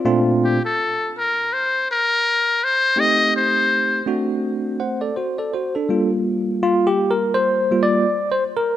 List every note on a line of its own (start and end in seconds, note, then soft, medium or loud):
0.05 0.58 A#2 medium
0.05 0.58 A3 medium
0.05 0.58 C4 medium
0.05 0.58 D4 medium
0.05 0.58 F4 medium
0.44 0.62 G4 medium
0.65 1.12 A4 medium
1.18 1.55 A#4 medium
1.53 1.88 C5 medium
1.91 2.65 A#4 medium
2.64 3.01 C5 loud
2.96 4.00 A3 medium
2.96 4.00 C4 medium
2.96 4.00 D#4 medium
2.96 4.01 G4 medium
2.96 3.35 D#5 loud
3.36 4.04 C5 medium
4.06 5.10 A3 medium
4.06 5.10 C4 medium
4.06 4.80 D4 medium
4.06 4.80 F#4 medium
4.80 5.00 C5 medium
4.80 5.00 F#5 medium
5.01 5.16 A4 medium
5.01 5.16 D5 medium
5.16 5.37 F#4 medium
5.16 5.36 C5 medium
5.38 5.53 A4 medium
5.38 5.52 D5 medium
5.53 5.74 F#4 medium
5.53 5.73 C5 medium
5.75 6.10 D4 soft
5.75 6.09 A4 medium
5.89 7.70 G3 soft
5.89 7.70 A#3 soft
5.89 6.62 F4 medium
6.63 6.88 F4 medium
6.87 7.12 G4 medium
7.11 7.36 A#4 medium
7.34 7.80 C5 medium
7.71 8.04 G3 soft
7.71 8.05 A#3 soft
7.71 8.05 F4 medium
7.83 8.29 D5 loud
8.32 8.43 C5 medium
8.57 8.77 A#4 medium